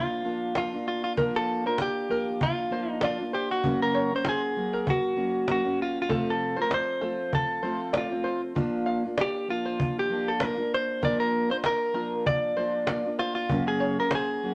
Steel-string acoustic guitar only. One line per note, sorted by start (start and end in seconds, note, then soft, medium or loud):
0.00 0.23 F3 medium
0.00 0.24 A#3 medium
0.00 0.24 D4 medium
0.00 0.24 F4 soft
0.24 0.54 F3 medium
0.24 0.55 A#3 medium
0.24 0.55 D4 medium
0.24 0.56 F4 medium
0.55 0.72 F3 medium
0.55 0.73 A#3 medium
0.55 0.72 D4 medium
0.55 0.71 F4 medium
0.72 1.16 A#3 soft
0.72 1.16 D4 soft
0.72 1.16 F4 medium
1.16 1.64 A#2 medium
1.16 1.64 F3 medium
1.16 1.65 A#3 medium
1.16 1.65 D4 medium
1.16 1.63 F4 medium
1.64 2.08 A#3 soft
1.64 2.09 D4 soft
1.64 2.09 F4 medium
2.09 2.69 F3 soft
2.09 2.70 A#3 medium
2.09 2.71 D4 medium
2.09 2.71 F4 medium
2.70 3.01 F3 medium
2.70 3.01 A#3 medium
2.70 3.02 D4 medium
2.70 3.02 F4 medium
3.02 3.19 F3 medium
3.02 3.19 A#3 medium
3.02 3.19 D4 medium
3.02 3.18 F4 medium
3.19 3.64 A#3 soft
3.19 3.64 D4 soft
3.19 3.64 F4 medium
3.64 4.12 F#2 medium
3.64 4.12 C#3 medium
3.64 4.12 F#3 medium
3.64 4.12 A#3 medium
3.64 4.11 C#4 medium
3.64 4.11 F#4 medium
4.12 4.55 F#3 soft
4.12 4.56 A#3 soft
4.12 4.56 C#4 medium
4.12 4.56 F#4 soft
4.56 5.15 F#3 medium
4.56 5.15 A#3 medium
4.56 5.16 C#4 medium
4.56 5.17 F#4 medium
5.16 5.46 F#3 medium
5.16 5.46 A#3 medium
5.16 5.47 C#4 medium
5.16 5.48 F#4 medium
5.47 5.64 F#3 medium
5.47 5.64 A#3 medium
5.47 5.63 C#4 medium
5.47 5.63 F#4 medium
5.64 6.08 F#3 soft
5.64 6.08 A#3 soft
5.64 6.09 C#4 soft
5.64 6.09 F#4 medium
6.08 6.57 F2 medium
6.08 6.57 C3 medium
6.08 6.57 F3 medium
6.08 6.57 A3 medium
6.08 6.56 C4 medium
6.08 6.56 F4 medium
6.57 7.00 F3 soft
6.57 7.01 A3 soft
6.57 7.01 C4 soft
6.57 7.02 F4 soft
7.02 7.62 F3 medium
7.02 7.62 A3 medium
7.02 7.63 C4 medium
7.02 7.64 F4 medium
7.63 7.92 F3 medium
7.63 7.93 A3 medium
7.63 7.94 C4 medium
7.63 7.94 F4 medium
7.94 8.11 F3 medium
7.94 8.11 A3 medium
7.94 8.10 C4 medium
7.94 8.10 F4 medium
8.11 8.54 F3 soft
8.11 8.56 A3 soft
8.11 8.55 C4 medium
8.11 8.55 F4 medium
8.55 9.04 A#2 medium
8.55 9.03 F3 medium
8.55 9.04 A#3 medium
8.55 9.04 D4 medium
8.55 9.03 F4 medium
9.04 9.47 A#3 soft
9.04 9.48 D4 soft
9.04 9.49 F4 soft
9.48 10.09 F3 medium
9.48 10.10 A#3 medium
9.48 10.10 D4 medium
9.48 10.11 F4 medium
10.10 10.40 F3 medium
10.10 10.41 A#3 medium
10.10 10.41 D4 medium
10.10 10.42 F4 medium
10.41 10.58 F3 medium
10.41 10.57 A#3 medium
10.41 10.57 D4 medium
10.41 10.55 F4 medium
10.56 11.01 A#3 soft
10.56 11.01 D4 soft
10.56 11.02 F4 medium
11.02 11.50 A#2 medium
11.02 11.50 F3 medium
11.02 11.50 A#3 medium
11.02 11.50 D4 medium
11.02 11.49 F4 medium
11.50 11.93 A#3 soft
11.50 11.94 D4 soft
11.50 11.94 F4 soft
11.93 12.55 F3 medium
11.93 12.56 A#3 medium
11.93 12.57 D4 medium
11.93 12.57 F4 medium
12.56 12.86 F3 medium
12.56 12.87 A#3 medium
12.56 12.87 D4 medium
12.56 12.88 F4 medium
12.87 13.04 F3 medium
12.87 13.05 A#3 medium
12.87 13.05 D4 medium
12.87 13.04 F4 medium
13.05 13.50 A#3 soft
13.05 13.50 D4 medium
13.05 13.49 F4 medium
13.50 13.97 F#2 medium
13.50 13.97 C#3 medium
13.50 13.97 F#3 medium
13.50 13.98 A#3 medium
13.50 13.97 C#4 medium
13.50 13.97 F#4 medium
13.98 14.42 F#3 soft
13.98 14.43 A#3 soft
13.98 14.42 C#4 soft
13.98 14.42 F#4 soft
14.43 14.54 F#3 medium
14.43 14.54 A#3 medium
14.43 14.54 C#4 medium
14.43 14.54 F#4 medium